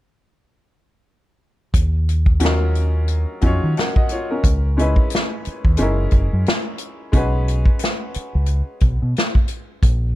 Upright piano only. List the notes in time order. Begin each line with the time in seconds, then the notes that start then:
2.40 F#3 C#4 D#4 F4
2.45 A#4
3.41 F#3 C#4 D#4 F4
3.46 C#5
3.78 A#4 F#5
3.97 F#4 D#5
4.12 F4 C#5
4.31 C#4 A#4
4.77 G#3 C#4 D#4 E4
4.82 B4
5.77 G#3 C#4 D#4
5.81 E4 A#4
7.12 G#3 C#4 D#4 F#4
7.17 B4